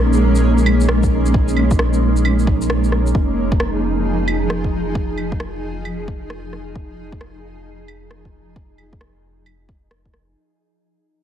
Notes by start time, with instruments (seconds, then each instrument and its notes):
Already playing: sub bass A#1, ambient pad G#3 A#3 C#4, synth texture D#4
0.13 shaker
0.35 shaker
0.58 shaker
0.66 claves
0.81 shaker
0.89 cross-stick
1.03 kick, shaker
1.26 shaker
1.34 kick
1.48 shaker
1.57 claves
1.71 kick, shaker
1.79 cross-stick
1.94 shaker
2.17 shaker
2.25 claves
2.39 shaker
2.47 kick
2.62 shaker
2.70 cross-stick
2.84 shaker
2.92 cross-stick
3.07 shaker
3.15 sub bass F1, ambient pad F3 D#4 G#4, kick
3.52 kick
3.60 cross-stick
4.28 claves
4.50 cross-stick
4.64 kick
4.95 kick
5.18 claves
5.32 kick
5.40 cross-stick
5.85 claves
6.08 kick
6.30 cross-stick
6.53 cross-stick
6.76 kick
7.12 kick
7.21 cross-stick
7.88 claves
8.11 cross-stick
8.25 kick
8.56 kick
8.78 claves
8.93 kick
9.01 cross-stick
9.46 claves
9.69 kick
9.91 cross-stick
10.06 kick
10.14 cross-stick